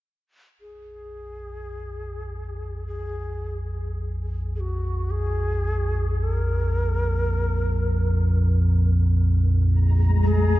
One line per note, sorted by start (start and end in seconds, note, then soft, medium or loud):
0.57 10.60 A#1 medium
0.57 10.60 F2 medium
0.57 2.86 G#4 medium
2.87 3.95 G#4 medium
4.55 4.61 G#4 medium
4.60 5.12 F#4 medium
5.11 6.24 G#4 loud
6.23 8.50 A#4 medium
9.65 10.60 G#3 medium
9.65 10.60 A#5 medium
10.23 10.60 G#4 loud